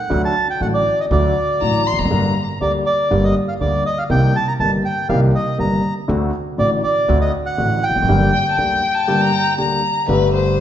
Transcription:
0.00 0.22 F#5 medium
0.10 0.32 D2 medium
0.10 0.32 D3 medium
0.10 0.32 F#3 soft
0.10 0.32 A3 soft
0.10 0.32 F#4 medium
0.25 0.48 A5 medium
0.50 0.61 G5 medium
0.61 0.82 A1 medium
0.61 0.82 A1 soft
0.61 0.82 A2 soft
0.61 0.82 D3 soft
0.61 0.82 F#3 soft
0.61 0.82 A3 soft
0.61 0.82 F#4 soft
0.61 0.67 F#5 medium
0.74 0.99 D5 medium
1.00 1.06 D#5 medium
1.11 1.32 D2 medium
1.11 1.32 D3 medium
1.11 1.32 F#3 soft
1.11 1.32 A3 soft
1.11 1.32 F#4 medium
1.11 1.82 D5 medium
1.61 1.82 A1 soft
1.61 1.82 A2 soft
1.61 1.82 D3 soft
1.61 1.82 F#3 soft
1.61 1.82 A3 soft
1.61 1.82 F#4 soft
1.61 1.88 A#5 medium
1.87 2.01 C6 medium
1.92 1.98 E1 soft
1.92 1.99 E2 soft
1.99 2.05 F1 soft
1.99 2.05 F2 soft
1.99 2.49 A#5 medium
2.05 2.11 F#1 medium
2.05 2.11 F#2 medium
2.11 2.32 G1 medium
2.11 2.32 G2 medium
2.11 2.32 D3 medium
2.11 2.32 G3 soft
2.11 2.32 A#3 soft
2.11 2.32 G4 medium
2.61 2.82 D2 soft
2.61 2.82 D3 soft
2.61 2.82 G3 soft
2.61 2.82 A#3 soft
2.61 2.82 G4 soft
2.61 2.72 D5 medium
2.86 3.24 D5 medium
3.10 3.32 G1 medium
3.10 3.32 G2 medium
3.10 3.31 D3 soft
3.10 3.31 G3 soft
3.10 3.32 A#3 soft
3.10 3.32 G4 medium
3.24 3.35 D#5 medium
3.49 3.54 F5 medium
3.61 3.81 D2 soft
3.61 3.82 D2 soft
3.61 3.81 D3 soft
3.61 3.82 G3 soft
3.61 3.82 A#3 soft
3.61 3.82 G4 soft
3.61 3.84 D5 medium
3.86 3.98 D#5 medium
3.98 4.04 F5 medium
4.10 4.31 C2 medium
4.10 4.31 C3 medium
4.10 4.31 D#3 medium
4.10 4.31 A#3 soft
4.10 4.31 C4 soft
4.10 4.31 G4 medium
4.10 4.36 G5 medium
4.36 4.47 A5 medium
4.48 4.53 A#5 medium
4.59 4.80 G1 soft
4.59 4.80 G2 soft
4.59 4.81 D#3 soft
4.59 4.81 A#3 soft
4.59 4.81 C4 soft
4.59 4.81 G4 soft
4.59 4.71 A5 medium
4.85 5.08 G5 medium
5.09 5.30 C2 medium
5.09 5.30 C3 medium
5.09 5.30 D#3 medium
5.09 5.30 A#3 soft
5.09 5.30 C4 medium
5.09 5.30 G4 medium
5.09 5.20 F5 medium
5.35 5.58 D#5 medium
5.58 5.80 G1 soft
5.58 5.80 G1 medium
5.58 5.80 G2 soft
5.58 5.79 D#3 soft
5.58 5.80 A#3 soft
5.58 5.80 C4 soft
5.58 5.80 G4 soft
5.58 5.94 A#5 medium
6.08 6.29 D2 medium
6.08 6.30 D2 medium
6.08 6.29 D3 medium
6.08 6.29 A3 medium
6.08 6.30 C4 medium
6.08 6.30 F#4 medium
6.58 6.79 A1 soft
6.58 6.80 A1 soft
6.58 6.79 A2 soft
6.58 6.79 D3 soft
6.58 6.79 A3 soft
6.58 6.79 C4 soft
6.58 6.79 F#4 soft
6.58 6.70 D5 medium
6.84 7.18 D5 medium
7.08 7.29 D2 medium
7.08 7.30 D2 medium
7.08 7.29 D3 medium
7.08 7.29 A3 medium
7.08 7.29 C4 medium
7.08 7.30 F#4 medium
7.21 7.32 D#5 medium
7.46 7.84 F#5 medium
7.58 7.79 A1 medium
7.58 7.79 A1 soft
7.58 7.79 A2 soft
7.58 7.79 D3 soft
7.58 7.79 A3 soft
7.58 7.79 C4 soft
7.58 7.79 F#4 soft
7.83 9.54 G5 medium
7.90 7.95 E1 soft
7.90 7.96 E2 soft
7.96 8.02 F1 medium
7.96 8.02 F2 medium
8.02 8.08 F#1 medium
8.02 8.08 F#2 medium
8.08 8.29 G1 medium
8.08 8.29 G2 medium
8.08 8.29 D3 medium
8.08 8.29 G3 medium
8.08 8.29 A#3 medium
8.08 8.30 G4 medium
8.33 8.50 G5 medium
8.51 8.58 A5 soft
8.57 8.79 D2 medium
8.57 8.79 D2 soft
8.57 8.79 D3 soft
8.57 8.79 G3 soft
8.57 8.79 A#3 soft
8.57 8.79 G4 soft
8.57 8.96 G5 medium
8.94 9.23 A5 medium
9.08 9.29 G1 medium
9.08 9.29 G2 medium
9.08 9.29 D3 soft
9.08 9.29 G3 soft
9.08 9.29 A#3 soft
9.08 9.29 G4 medium
9.21 9.57 A#5 medium
9.58 9.79 D2 soft
9.58 9.79 D3 soft
9.58 9.79 G3 soft
9.58 9.79 A#3 soft
9.58 9.79 G4 soft
9.58 10.05 A#5 medium
10.07 10.60 G1 medium
10.07 10.60 G2 medium
10.07 10.60 D3 medium
10.07 10.60 G3 medium
10.07 10.60 A3 medium
10.07 10.60 G4 medium
10.07 10.32 B4 medium
10.35 10.60 C5 medium

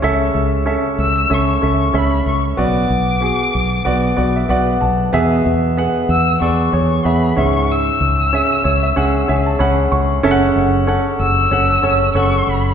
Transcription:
0.02 0.30 C#2 medium
0.02 0.95 C#3 medium
0.02 0.50 C#4 medium
0.02 0.51 A4 medium
0.02 0.51 E5 loud
0.35 0.76 C#2 medium
0.66 1.14 C#4 medium
0.66 1.14 A4 medium
0.66 1.15 E5 medium
0.99 1.25 C#2 medium
0.99 1.35 E6 medium
1.30 1.57 C#2 medium
1.30 1.54 C#4 medium
1.30 1.55 A4 soft
1.30 1.55 E5 medium
1.30 1.99 C#6 medium
1.62 1.89 C#2 medium
1.62 1.86 C#4 medium
1.62 1.87 A4 soft
1.62 1.87 E5 medium
1.94 2.21 C#2 medium
1.94 2.42 C#4 medium
1.94 2.42 A4 medium
1.94 2.42 E5 medium
1.94 2.27 B5 medium
2.26 2.52 C#2 medium
2.26 2.42 C#6 medium
2.57 2.85 B1 medium
2.57 3.05 B3 medium
2.57 3.06 F#4 medium
2.57 3.06 D5 medium
2.57 4.47 D6 medium
2.90 3.31 B1 medium
3.21 3.69 B3 medium
3.21 3.70 F#4 soft
3.21 3.70 G#4 medium
3.55 3.81 B1 medium
3.85 4.12 B1 medium
3.85 4.10 B3 medium
3.85 4.10 F#4 medium
3.85 4.10 D5 medium
4.16 4.44 B1 medium
4.16 4.41 B3 medium
4.16 4.42 F#4 medium
4.16 4.42 D5 medium
4.36 4.49 E5 soft
4.49 4.76 B1 medium
4.49 4.97 B3 medium
4.49 4.97 F#4 medium
4.49 4.98 D5 medium
4.49 4.80 F#5 medium
4.81 5.08 B1 medium
4.81 5.11 A5 medium
5.13 5.40 E2 medium
5.13 6.05 B2 medium
5.13 5.61 B3 medium
5.13 5.61 G#4 medium
5.13 5.61 E5 medium
5.46 5.87 E2 medium
5.77 6.25 B3 medium
5.77 6.25 G#4 medium
5.77 6.25 F#5 medium
6.09 6.35 E2 medium
6.09 6.40 E6 medium
6.40 6.67 E2 medium
6.40 6.65 B3 medium
6.40 6.65 G#4 soft
6.40 6.66 D5 medium
6.40 7.06 C#6 medium
6.72 6.99 E2 medium
6.72 6.97 B3 soft
6.72 6.97 G#4 soft
6.72 6.97 C#5 medium
7.04 7.31 E2 medium
7.04 7.37 B3 medium
7.04 7.35 G#4 medium
7.04 7.36 E5 medium
7.04 7.37 B5 medium
7.37 7.89 C#2 medium
7.37 8.29 G#2 soft
7.37 8.15 C#4 medium
7.37 8.15 G#4 medium
7.37 8.15 E5 medium
7.37 7.72 C#6 medium
7.71 9.61 E6 medium
8.01 8.42 C#2 medium
8.33 8.80 C#4 medium
8.33 8.81 G#4 soft
8.33 8.81 E5 medium
8.64 8.91 C#2 medium
8.64 8.81 C#5 medium
8.83 8.96 E5 medium
8.96 9.23 C#2 medium
8.96 9.20 C#4 medium
8.96 9.21 G#4 medium
8.96 9.21 F#5 medium
9.28 9.55 C#2 medium
9.28 9.52 C#4 medium
9.28 9.53 G#4 medium
9.28 9.53 E5 medium
9.28 9.45 G#5 medium
9.46 9.59 A5 medium
9.59 9.86 C#2 medium
9.59 10.07 C#4 medium
9.59 10.07 G#4 medium
9.59 10.08 F#5 medium
9.59 9.90 B5 medium
9.92 10.18 C#2 medium
9.92 10.22 C#6 medium
10.23 10.50 F#1 medium
10.23 11.15 C#3 medium
10.23 10.71 C#4 medium
10.23 10.71 A4 medium
10.23 10.31 E5 medium
10.31 10.75 F#5 loud
10.56 10.97 F#1 medium
10.87 11.35 C#4 medium
10.87 11.35 A4 medium
10.87 11.36 F#5 medium
11.19 11.46 F#1 medium
11.19 12.12 E6 medium
11.51 11.78 F#1 medium
11.51 11.75 C#4 medium
11.51 11.76 A4 medium
11.51 11.76 F#5 medium
11.82 12.09 F#1 medium
11.82 12.07 C#4 medium
11.82 12.07 A4 soft
11.82 12.08 C#5 medium
12.15 12.41 F#1 medium
12.15 12.63 C#4 medium
12.15 12.63 A4 medium
12.15 12.63 F#5 medium
12.15 12.50 C#6 medium
12.47 12.73 F#1 medium
12.47 12.74 B5 medium

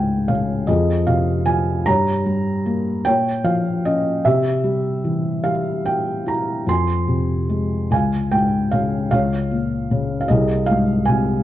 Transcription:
0.00 0.65 C#2 soft
0.00 0.67 G#2 soft
0.00 0.27 F5 medium
0.00 0.30 G5 medium
0.00 0.70 G#5 medium
0.28 0.67 C#3 soft
0.28 0.65 F5 medium
0.67 1.83 F2 medium
0.67 1.82 G#4 medium
0.67 1.08 D#5 medium
1.07 1.84 C3 soft
1.07 1.48 F5 medium
1.46 1.85 F3 soft
1.46 1.87 G#5 medium
1.86 3.02 G2 medium
1.86 3.02 C#5 medium
1.86 3.09 A#5 medium
2.26 3.03 G3 medium
2.66 3.04 A#3 medium
3.05 4.21 A#2 medium
3.05 4.21 C#5 medium
3.05 3.46 G5 medium
3.44 4.22 F3 medium
3.44 3.82 F5 medium
3.85 4.24 C#4 soft
3.85 4.26 D#5 medium
4.25 6.65 C3 medium
4.25 5.43 G4 medium
4.25 5.49 E5 medium
4.64 5.42 G3 soft
5.04 6.65 E3 soft
5.44 6.64 G3 soft
5.44 5.87 F5 medium
5.86 6.28 G5 medium
6.26 6.67 E4 soft
6.26 6.70 A#5 medium
6.67 7.87 F2 medium
6.67 7.96 C6 medium
6.71 7.89 G#5 medium
7.08 7.88 C3 soft
7.49 7.90 G#3 soft
7.90 9.08 C#2 medium
7.90 8.70 F5 medium
7.90 8.34 G#5 medium
8.32 9.10 G#2 soft
8.32 8.74 G5 medium
8.71 9.11 C#3 soft
8.71 9.10 F5 medium
9.11 10.26 C#2 medium
9.11 10.26 C#5 medium
9.11 10.19 F5 medium
9.51 10.27 A#2 soft
9.91 10.29 C#3 medium
10.21 10.28 F5 medium
10.28 11.43 C2 medium
10.28 11.43 G#4 medium
10.28 10.65 D#5 medium
10.66 11.43 G#2 soft
10.66 11.04 F5 medium
11.05 11.43 C3 soft
11.05 11.43 G#5 medium

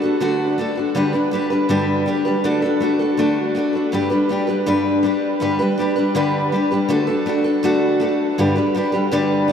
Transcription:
0.02 0.20 D4 soft
0.02 0.21 F#4 soft
0.02 0.21 A4 soft
0.20 0.58 D3 medium
0.20 0.57 A3 medium
0.20 0.59 D4 medium
0.20 0.59 F#4 medium
0.20 0.59 A4 medium
0.58 0.77 A3 medium
0.58 0.77 D4 medium
0.58 0.76 F#4 medium
0.58 0.74 A4 medium
0.76 0.95 D4 soft
0.76 0.96 F#4 soft
0.76 0.95 A4 soft
0.95 1.14 G2 medium
0.95 1.14 D3 medium
0.95 1.14 G3 medium
0.95 1.14 D4 medium
0.95 1.13 G4 medium
0.95 1.12 B4 medium
1.13 1.30 G3 soft
1.13 1.32 D4 soft
1.13 1.33 G4 soft
1.13 1.32 B4 soft
1.31 1.51 G3 medium
1.31 1.51 D4 medium
1.31 1.50 G4 medium
1.31 1.49 B4 medium
1.50 1.69 G3 soft
1.50 1.69 D4 soft
1.50 1.69 G4 soft
1.50 1.69 B4 soft
1.69 2.07 G2 medium
1.69 2.07 D3 medium
1.69 2.05 G3 medium
1.69 2.07 D4 medium
1.69 2.07 G4 medium
1.69 2.08 B4 medium
2.06 2.25 G3 medium
2.06 2.26 D4 medium
2.06 2.25 G4 medium
2.06 2.24 B4 medium
2.25 2.44 G3 soft
2.25 2.44 D4 soft
2.25 2.45 G4 soft
2.25 2.44 B4 soft
2.44 2.63 D3 medium
2.44 2.63 A3 medium
2.44 2.63 D4 medium
2.44 2.63 F#4 medium
2.44 2.61 A4 medium
2.62 2.81 D4 soft
2.62 2.82 F#4 soft
2.62 2.81 A4 medium
2.80 3.00 A3 medium
2.80 3.00 D4 medium
2.80 3.00 F#4 medium
2.80 2.98 A4 medium
2.99 3.18 D4 soft
2.99 3.18 F#4 soft
2.99 3.18 A4 soft
3.17 3.55 D3 medium
3.17 3.54 A3 medium
3.17 3.56 D4 medium
3.17 3.56 F#4 medium
3.17 3.57 A4 medium
3.55 3.74 A3 medium
3.55 3.75 D4 medium
3.55 3.74 F#4 medium
3.55 3.72 A4 medium
3.73 3.93 D4 soft
3.73 3.93 F#4 soft
3.73 3.92 A4 soft
3.92 4.11 G2 medium
3.92 4.11 D3 medium
3.92 4.12 G3 medium
3.92 4.11 D4 medium
3.92 4.10 G4 medium
3.92 4.08 B4 medium
4.10 4.28 G3 soft
4.10 4.29 D4 soft
4.10 4.30 G4 soft
4.10 4.29 B4 soft
4.29 4.48 G3 soft
4.29 4.48 D4 medium
4.29 4.47 G4 medium
4.29 4.46 B4 medium
4.47 4.66 G3 soft
4.47 4.66 D4 soft
4.47 4.67 G4 soft
4.47 4.66 B4 soft
4.66 5.04 G2 medium
4.66 5.04 D3 medium
4.66 5.02 G3 medium
4.66 5.04 D4 medium
4.66 5.04 G4 medium
4.66 5.05 B4 medium
5.03 5.40 G3 medium
5.03 5.41 D4 medium
5.03 5.41 G4 medium
5.03 5.41 B4 medium
5.40 5.59 G2 medium
5.40 5.60 D3 medium
5.40 5.60 G3 medium
5.40 5.60 D4 medium
5.40 5.59 G4 medium
5.40 5.58 B4 medium
5.59 5.76 G3 soft
5.59 5.78 D4 soft
5.59 5.79 G4 soft
5.59 5.78 B4 medium
5.78 5.97 G3 medium
5.78 5.97 D4 medium
5.78 5.95 G4 medium
5.78 5.94 B4 medium
5.96 6.14 G3 soft
5.96 6.15 D4 soft
5.96 6.15 G4 soft
5.96 6.15 B4 soft
6.15 6.52 G2 medium
6.15 6.52 D3 medium
6.15 6.51 G3 medium
6.15 6.53 D4 medium
6.15 6.53 G4 medium
6.15 6.53 B4 loud
6.52 6.71 G3 medium
6.52 6.72 D4 medium
6.52 6.70 G4 medium
6.52 6.69 B4 medium
6.71 6.89 G3 soft
6.71 6.89 D4 soft
6.71 6.90 G4 soft
6.71 6.90 B4 soft
6.89 7.08 D3 medium
6.89 7.08 A3 medium
6.89 7.09 D4 medium
6.89 7.07 F#4 medium
6.89 7.06 A4 medium
7.07 7.26 D4 soft
7.07 7.27 F#4 soft
7.07 7.26 A4 medium
7.26 7.45 A3 medium
7.26 7.46 D4 medium
7.26 7.45 F#4 medium
7.26 7.43 A4 medium
7.44 7.63 D4 soft
7.44 7.64 F#4 soft
7.44 7.64 A4 medium
7.63 8.01 D3 medium
7.63 7.99 A3 medium
7.63 8.01 D4 medium
7.63 8.01 F#4 medium
7.63 8.02 A4 loud
8.00 8.38 A3 medium
8.00 8.39 D4 medium
8.00 8.39 F#4 medium
8.00 8.39 A4 medium
8.38 8.57 G2 medium
8.38 8.57 D3 medium
8.38 8.57 G3 medium
8.38 8.57 D4 medium
8.38 8.55 G4 medium
8.38 8.54 B4 medium
8.56 8.73 G3 soft
8.56 8.74 D4 soft
8.56 8.75 G4 soft
8.56 8.75 B4 medium
8.75 8.94 G3 medium
8.75 8.93 D4 medium
8.75 8.92 G4 medium
8.75 8.91 B4 medium
8.92 9.11 G3 soft
8.92 9.12 D4 soft
8.92 9.12 G4 soft
8.92 9.12 B4 medium
9.11 9.49 G2 medium
9.11 9.50 D3 medium
9.11 9.47 G3 medium
9.11 9.48 D4 medium
9.11 9.49 G4 medium
9.11 9.50 B4 medium
9.48 9.52 G3 medium

